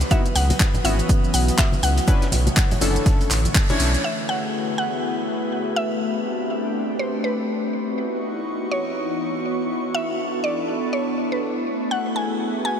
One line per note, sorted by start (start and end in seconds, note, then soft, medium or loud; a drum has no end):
0.00 2.84 E3 medium
0.00 4.00 E3 medium
0.00 2.05 F#3 medium
0.00 2.04 B4 medium
0.00 2.87 B4 medium
0.00 2.05 D#6 medium
0.00 snare soft
0.00 closed hi-hat soft
0.00 shaker soft
0.11 0.22 B3 loud
0.11 0.22 D#4 medium
0.11 0.22 E4 medium
0.11 0.22 F#4 loud
0.11 0.22 E5 loud
0.11 2.08 D#6 medium
0.11 kick loud
0.11 closed hi-hat medium
0.11 shaker medium
0.11 shaker soft
0.26 closed hi-hat soft
0.26 high bongo soft
0.26 shaker soft
0.35 0.52 C#2 loud
0.35 0.86 F#5 loud
0.35 snare soft
0.35 open hi-hat loud
0.35 shaker medium
0.50 closed hi-hat soft
0.50 closed hi-hat medium
0.50 high bongo medium
0.50 high conga medium
0.50 shaker soft
0.60 kick loud
0.60 snare loud
0.60 clap loud
0.60 closed hi-hat medium
0.60 shaker medium
0.60 shaker soft
0.74 closed hi-hat soft
0.74 low conga medium
0.74 shaker soft
0.84 1.01 G#1 medium
0.84 2.05 B3 medium
0.84 2.05 C#4 medium
0.84 2.05 E4 medium
0.84 2.05 F#4 medium
0.84 1.35 E5 loud
0.84 2.87 F#5 medium
0.84 open hi-hat loud
0.84 high bongo medium
0.84 shaker medium
0.99 closed hi-hat medium
0.99 shaker soft
1.09 kick loud
1.09 closed hi-hat medium
1.09 high conga medium
1.09 shaker medium
1.09 shaker soft
1.24 shaker soft
1.34 1.50 B1 loud
1.34 1.57 F#5 loud
1.34 open hi-hat loud
1.34 shaker medium
1.48 closed hi-hat medium
1.48 closed hi-hat soft
1.48 shaker soft
1.58 1.84 E5 loud
1.58 kick loud
1.58 snare loud
1.58 clap loud
1.58 closed hi-hat medium
1.58 shaker medium
1.58 shaker soft
1.72 high bongo medium
1.72 high conga medium
1.72 shaker soft
1.83 2.00 C#2 medium
1.83 3.76 F#5 loud
1.83 open hi-hat loud
1.83 shaker medium
1.97 closed hi-hat soft
1.97 closed hi-hat medium
1.97 shaker soft
2.07 4.04 D3 medium
2.07 4.02 D3 medium
2.07 4.02 A3 medium
2.07 2.24 C#4 loud
2.07 2.24 D4 medium
2.07 2.24 E4 medium
2.07 2.24 B4 loud
2.07 4.02 C#5 medium
2.07 kick loud
2.07 closed hi-hat medium
2.07 shaker medium
2.07 shaker soft
2.22 snare medium
2.22 closed hi-hat soft
2.22 high bongo soft
2.22 shaker soft
2.32 2.49 B1 loud
2.32 snare soft
2.32 open hi-hat loud
2.32 low conga medium
2.32 shaker medium
2.37 7.73 A3 medium
2.47 closed hi-hat medium
2.47 high bongo medium
2.47 high conga loud
2.47 shaker soft
2.57 kick loud
2.57 snare loud
2.57 clap loud
2.57 closed hi-hat medium
2.57 shaker medium
2.57 shaker soft
2.71 closed hi-hat soft
2.71 low conga medium
2.71 shaker soft
2.81 2.98 F#1 medium
2.81 3.28 C#4 medium
2.81 3.28 D4 medium
2.81 3.28 E4 medium
2.81 3.28 A4 loud
2.81 open hi-hat loud
2.81 high bongo medium
2.81 shaker medium
2.96 4.84 C#5 medium
2.96 6.71 E5 medium
2.96 closed hi-hat medium
2.96 shaker soft
3.06 kick loud
3.06 snare soft
3.06 closed hi-hat medium
3.06 high conga medium
3.06 shaker medium
3.06 shaker soft
3.21 closed hi-hat soft
3.21 shaker soft
3.31 3.47 A1 loud
3.31 snare loud
3.31 clap medium
3.31 open hi-hat loud
3.31 shaker medium
3.45 closed hi-hat medium
3.45 low conga medium
3.45 shaker soft
3.55 kick loud
3.55 clap loud
3.55 closed hi-hat medium
3.55 shaker soft
3.55 shaker medium
3.70 4.02 C#4 medium
3.70 4.02 D4 medium
3.70 4.02 E4 medium
3.70 4.02 C#5 loud
3.70 closed hi-hat soft
3.70 high bongo medium
3.70 high conga loud
3.70 shaker soft
3.80 3.96 B1 medium
3.80 snare soft
3.80 open hi-hat loud
3.80 shaker medium
3.94 snare soft
3.94 closed hi-hat medium
3.94 shaker soft
4.04 7.70 A3 medium
4.04 6.01 B3 medium
4.04 5.99 E4 medium
4.04 5.99 F#4 medium
4.04 5.99 G#4 medium
4.04 7.70 B4 medium
4.04 4.27 E5 loud
4.19 closed hi-hat soft
4.19 shaker soft
4.29 4.77 F#5 loud
4.29 shaker medium
4.44 shaker soft
4.54 closed hi-hat medium
4.54 shaker soft
4.62 6.01 F#4 medium
4.68 closed hi-hat soft
4.68 shaker soft
4.78 5.48 F#5 loud
4.93 closed hi-hat soft
4.93 shaker soft
5.03 shaker soft
5.17 shaker soft
5.27 open hi-hat loud
5.27 shaker medium
5.42 closed hi-hat medium
5.42 shaker soft
5.52 closed hi-hat medium
5.52 shaker soft
5.67 closed hi-hat soft
5.67 shaker soft
5.76 6.95 E5 loud
5.91 closed hi-hat medium
5.91 shaker soft
6.01 7.73 C4 medium
6.01 7.72 C4 medium
6.01 7.72 D4 medium
6.01 7.72 G4 medium
6.01 shaker soft
6.16 closed hi-hat soft
6.16 shaker soft
6.20 7.73 G4 medium
6.26 open hi-hat loud
6.26 shaker medium
6.40 shaker soft
6.50 shaker soft
6.65 8.43 B4 medium
6.65 shaker soft
6.75 open hi-hat loud
6.99 7.22 C5 medium
7.14 shaker soft
7.24 7.70 B4 medium
7.24 open hi-hat loud
7.39 shaker soft
7.49 closed hi-hat medium
7.49 shaker soft
7.73 11.87 B3 medium
7.73 12.80 B3 medium
7.73 9.92 D#4 medium
7.73 12.80 E4 medium
7.73 9.92 F#4 medium
7.73 11.87 C#6 medium
7.73 open hi-hat loud
7.73 shaker medium
7.88 closed hi-hat medium
7.97 10.74 E3 medium
7.97 closed hi-hat medium
8.22 12.63 C#6 medium
8.22 open hi-hat loud
8.22 shaker medium
8.61 10.74 F#4 medium
8.71 9.98 C#5 medium
8.71 9.94 D#5 medium
8.71 open hi-hat loud
8.96 closed hi-hat medium
9.21 open hi-hat loud
9.45 closed hi-hat medium
9.70 open hi-hat loud
9.94 11.89 D4 medium
9.94 11.89 A4 medium
9.94 10.40 E5 loud
10.18 11.91 D4 medium
10.18 open hi-hat loud
10.18 shaker medium
10.44 10.94 D5 loud
10.53 12.80 A3 medium
10.68 open hi-hat loud
10.68 shaker medium
10.83 12.80 E5 medium
10.83 closed hi-hat soft
10.93 11.33 C#5 medium
11.17 open hi-hat loud
11.17 shaker medium
11.32 11.64 B4 medium
11.67 open hi-hat loud
11.67 shaker medium
11.91 12.80 A3 medium
11.91 12.80 F#4 medium
11.91 12.80 G#4 medium
11.91 12.80 B4 medium
11.91 12.17 F#5 loud
12.16 12.64 G#5 loud
12.16 open hi-hat loud
12.55 12.80 F#4 medium
12.65 12.80 G#5 loud
12.65 open hi-hat loud